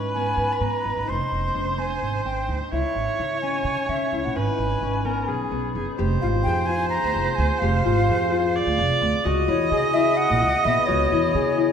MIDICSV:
0, 0, Header, 1, 5, 480
1, 0, Start_track
1, 0, Tempo, 466563
1, 1103, Time_signature, 7, 3, 24, 8
1, 12061, End_track
2, 0, Start_track
2, 0, Title_t, "Flute"
2, 0, Program_c, 0, 73
2, 146, Note_on_c, 0, 80, 74
2, 542, Note_on_c, 0, 83, 51
2, 557, Note_off_c, 0, 80, 0
2, 620, Note_on_c, 0, 82, 73
2, 635, Note_off_c, 0, 83, 0
2, 1125, Note_on_c, 0, 84, 72
2, 1140, Note_off_c, 0, 82, 0
2, 1839, Note_on_c, 0, 80, 71
2, 1855, Note_off_c, 0, 84, 0
2, 2310, Note_off_c, 0, 80, 0
2, 2317, Note_on_c, 0, 79, 72
2, 2648, Note_off_c, 0, 79, 0
2, 2798, Note_on_c, 0, 76, 70
2, 3475, Note_off_c, 0, 76, 0
2, 3517, Note_on_c, 0, 80, 74
2, 4005, Note_on_c, 0, 76, 68
2, 4020, Note_off_c, 0, 80, 0
2, 4371, Note_on_c, 0, 78, 61
2, 4386, Note_off_c, 0, 76, 0
2, 4484, Note_on_c, 0, 80, 65
2, 4499, Note_off_c, 0, 78, 0
2, 5681, Note_off_c, 0, 80, 0
2, 6393, Note_on_c, 0, 77, 69
2, 6455, Note_off_c, 0, 77, 0
2, 6615, Note_on_c, 0, 79, 86
2, 6853, Note_on_c, 0, 80, 87
2, 6868, Note_off_c, 0, 79, 0
2, 7089, Note_off_c, 0, 80, 0
2, 7095, Note_on_c, 0, 82, 87
2, 7568, Note_on_c, 0, 80, 79
2, 7583, Note_off_c, 0, 82, 0
2, 7808, Note_on_c, 0, 77, 78
2, 7823, Note_off_c, 0, 80, 0
2, 9257, Note_off_c, 0, 77, 0
2, 9758, Note_on_c, 0, 73, 78
2, 9979, Note_on_c, 0, 75, 87
2, 9994, Note_off_c, 0, 73, 0
2, 10224, Note_on_c, 0, 76, 90
2, 10240, Note_off_c, 0, 75, 0
2, 10462, Note_on_c, 0, 78, 92
2, 10478, Note_off_c, 0, 76, 0
2, 10950, Note_on_c, 0, 76, 86
2, 10965, Note_off_c, 0, 78, 0
2, 11176, Note_on_c, 0, 73, 79
2, 11191, Note_off_c, 0, 76, 0
2, 12061, Note_off_c, 0, 73, 0
2, 12061, End_track
3, 0, Start_track
3, 0, Title_t, "Viola"
3, 0, Program_c, 1, 41
3, 0, Note_on_c, 1, 71, 70
3, 1108, Note_on_c, 1, 72, 72
3, 1123, Note_off_c, 1, 71, 0
3, 2794, Note_on_c, 1, 73, 80
3, 2809, Note_off_c, 1, 72, 0
3, 4485, Note_on_c, 1, 71, 74
3, 4501, Note_off_c, 1, 73, 0
3, 5199, Note_on_c, 1, 70, 66
3, 5214, Note_off_c, 1, 71, 0
3, 5428, Note_on_c, 1, 68, 61
3, 5444, Note_off_c, 1, 70, 0
3, 5908, Note_off_c, 1, 68, 0
3, 5914, Note_on_c, 1, 68, 50
3, 6138, Note_off_c, 1, 68, 0
3, 6157, Note_on_c, 1, 72, 83
3, 8801, Note_on_c, 1, 74, 91
3, 8816, Note_off_c, 1, 72, 0
3, 9509, Note_on_c, 1, 75, 92
3, 9525, Note_off_c, 1, 74, 0
3, 12061, Note_off_c, 1, 75, 0
3, 12061, End_track
4, 0, Start_track
4, 0, Title_t, "Harp"
4, 0, Program_c, 2, 46
4, 0, Note_on_c, 2, 61, 50
4, 0, Note_on_c, 2, 63, 62
4, 156, Note_on_c, 2, 59, 57
4, 620, Note_off_c, 2, 59, 0
4, 624, Note_on_c, 2, 59, 54
4, 864, Note_off_c, 2, 63, 0
4, 868, Note_on_c, 2, 63, 53
4, 1100, Note_off_c, 2, 63, 0
4, 1104, Note_on_c, 2, 63, 70
4, 1591, Note_on_c, 2, 62, 51
4, 1652, Note_off_c, 2, 61, 0
4, 1652, Note_off_c, 2, 63, 0
4, 1827, Note_on_c, 2, 60, 63
4, 1889, Note_off_c, 2, 59, 0
4, 2314, Note_off_c, 2, 60, 0
4, 2319, Note_on_c, 2, 60, 55
4, 2554, Note_on_c, 2, 63, 52
4, 2616, Note_off_c, 2, 62, 0
4, 2800, Note_on_c, 2, 64, 66
4, 2862, Note_off_c, 2, 63, 0
4, 3281, Note_on_c, 2, 63, 51
4, 3342, Note_off_c, 2, 64, 0
4, 3523, Note_on_c, 2, 61, 62
4, 3585, Note_off_c, 2, 60, 0
4, 3996, Note_off_c, 2, 61, 0
4, 4000, Note_on_c, 2, 61, 63
4, 4245, Note_on_c, 2, 64, 50
4, 4307, Note_off_c, 2, 63, 0
4, 4478, Note_on_c, 2, 63, 65
4, 4540, Note_off_c, 2, 64, 0
4, 4958, Note_off_c, 2, 61, 0
4, 4963, Note_on_c, 2, 61, 46
4, 5191, Note_on_c, 2, 59, 59
4, 5668, Note_off_c, 2, 59, 0
4, 5672, Note_on_c, 2, 59, 58
4, 5916, Note_off_c, 2, 63, 0
4, 5920, Note_on_c, 2, 63, 52
4, 6156, Note_on_c, 2, 67, 75
4, 6405, Note_on_c, 2, 65, 65
4, 6640, Note_on_c, 2, 68, 55
4, 6702, Note_off_c, 2, 67, 0
4, 6875, Note_off_c, 2, 65, 0
4, 6879, Note_on_c, 2, 65, 68
4, 7599, Note_on_c, 2, 60, 63
4, 7660, Note_off_c, 2, 59, 0
4, 7660, Note_off_c, 2, 61, 0
4, 7841, Note_on_c, 2, 67, 81
4, 7903, Note_off_c, 2, 68, 0
4, 8075, Note_off_c, 2, 65, 0
4, 8079, Note_on_c, 2, 65, 73
4, 8320, Note_on_c, 2, 68, 57
4, 8382, Note_off_c, 2, 67, 0
4, 8550, Note_off_c, 2, 65, 0
4, 8554, Note_on_c, 2, 65, 70
4, 8701, Note_off_c, 2, 63, 0
4, 9267, Note_off_c, 2, 60, 0
4, 9271, Note_on_c, 2, 60, 66
4, 9519, Note_on_c, 2, 66, 87
4, 9580, Note_off_c, 2, 65, 0
4, 9752, Note_on_c, 2, 64, 66
4, 9991, Note_off_c, 2, 68, 0
4, 9995, Note_on_c, 2, 68, 64
4, 10236, Note_off_c, 2, 64, 0
4, 10240, Note_on_c, 2, 64, 67
4, 10956, Note_on_c, 2, 59, 66
4, 11018, Note_off_c, 2, 60, 0
4, 11190, Note_off_c, 2, 66, 0
4, 11194, Note_on_c, 2, 66, 82
4, 11434, Note_off_c, 2, 64, 0
4, 11438, Note_on_c, 2, 64, 72
4, 11670, Note_off_c, 2, 68, 0
4, 11674, Note_on_c, 2, 68, 66
4, 11910, Note_off_c, 2, 64, 0
4, 11914, Note_on_c, 2, 64, 64
4, 12061, Note_off_c, 2, 59, 0
4, 12061, Note_off_c, 2, 64, 0
4, 12061, Note_off_c, 2, 66, 0
4, 12061, Note_off_c, 2, 68, 0
4, 12061, End_track
5, 0, Start_track
5, 0, Title_t, "Upright bass"
5, 0, Program_c, 3, 32
5, 0, Note_on_c, 3, 44, 66
5, 338, Note_off_c, 3, 44, 0
5, 385, Note_on_c, 3, 44, 56
5, 493, Note_off_c, 3, 44, 0
5, 624, Note_on_c, 3, 44, 65
5, 733, Note_off_c, 3, 44, 0
5, 877, Note_on_c, 3, 32, 59
5, 980, Note_off_c, 3, 32, 0
5, 998, Note_on_c, 3, 32, 60
5, 1101, Note_off_c, 3, 32, 0
5, 1119, Note_on_c, 3, 29, 69
5, 1222, Note_off_c, 3, 29, 0
5, 1357, Note_on_c, 3, 29, 66
5, 1571, Note_off_c, 3, 29, 0
5, 1598, Note_on_c, 3, 29, 61
5, 2032, Note_off_c, 3, 29, 0
5, 2078, Note_on_c, 3, 32, 59
5, 2293, Note_off_c, 3, 32, 0
5, 2318, Note_on_c, 3, 32, 56
5, 2533, Note_off_c, 3, 32, 0
5, 2558, Note_on_c, 3, 38, 63
5, 2664, Note_off_c, 3, 38, 0
5, 2800, Note_on_c, 3, 37, 61
5, 2905, Note_off_c, 3, 37, 0
5, 3042, Note_on_c, 3, 32, 64
5, 3146, Note_off_c, 3, 32, 0
5, 3283, Note_on_c, 3, 49, 66
5, 3717, Note_off_c, 3, 49, 0
5, 3751, Note_on_c, 3, 49, 64
5, 3861, Note_off_c, 3, 49, 0
5, 4001, Note_on_c, 3, 49, 74
5, 4107, Note_off_c, 3, 49, 0
5, 4245, Note_on_c, 3, 37, 62
5, 4349, Note_off_c, 3, 37, 0
5, 4373, Note_on_c, 3, 34, 64
5, 4474, Note_off_c, 3, 34, 0
5, 4490, Note_on_c, 3, 32, 72
5, 4592, Note_off_c, 3, 32, 0
5, 4716, Note_on_c, 3, 32, 72
5, 4935, Note_off_c, 3, 32, 0
5, 4949, Note_on_c, 3, 32, 59
5, 5391, Note_off_c, 3, 32, 0
5, 5438, Note_on_c, 3, 35, 63
5, 5656, Note_off_c, 3, 35, 0
5, 5670, Note_on_c, 3, 35, 58
5, 5892, Note_off_c, 3, 35, 0
5, 5916, Note_on_c, 3, 30, 65
5, 6025, Note_off_c, 3, 30, 0
5, 6164, Note_on_c, 3, 29, 86
5, 6379, Note_off_c, 3, 29, 0
5, 6403, Note_on_c, 3, 32, 74
5, 6618, Note_off_c, 3, 32, 0
5, 6648, Note_on_c, 3, 41, 70
5, 7200, Note_off_c, 3, 41, 0
5, 7243, Note_on_c, 3, 38, 77
5, 7349, Note_off_c, 3, 38, 0
5, 7360, Note_on_c, 3, 29, 74
5, 7467, Note_off_c, 3, 29, 0
5, 7595, Note_on_c, 3, 38, 86
5, 7704, Note_off_c, 3, 38, 0
5, 7838, Note_on_c, 3, 29, 92
5, 8055, Note_off_c, 3, 29, 0
5, 8085, Note_on_c, 3, 32, 78
5, 8298, Note_off_c, 3, 32, 0
5, 8317, Note_on_c, 3, 41, 74
5, 8872, Note_off_c, 3, 41, 0
5, 8916, Note_on_c, 3, 38, 73
5, 9023, Note_off_c, 3, 38, 0
5, 9031, Note_on_c, 3, 29, 84
5, 9140, Note_off_c, 3, 29, 0
5, 9275, Note_on_c, 3, 38, 89
5, 9382, Note_off_c, 3, 38, 0
5, 9521, Note_on_c, 3, 37, 88
5, 9734, Note_off_c, 3, 37, 0
5, 9755, Note_on_c, 3, 40, 77
5, 9970, Note_off_c, 3, 40, 0
5, 9995, Note_on_c, 3, 49, 70
5, 10548, Note_off_c, 3, 49, 0
5, 10598, Note_on_c, 3, 34, 85
5, 10701, Note_off_c, 3, 34, 0
5, 10720, Note_on_c, 3, 37, 77
5, 10822, Note_off_c, 3, 37, 0
5, 10958, Note_on_c, 3, 34, 86
5, 11061, Note_off_c, 3, 34, 0
5, 11202, Note_on_c, 3, 37, 92
5, 11411, Note_off_c, 3, 37, 0
5, 11442, Note_on_c, 3, 40, 81
5, 11651, Note_off_c, 3, 40, 0
5, 11675, Note_on_c, 3, 49, 74
5, 12061, Note_off_c, 3, 49, 0
5, 12061, End_track
0, 0, End_of_file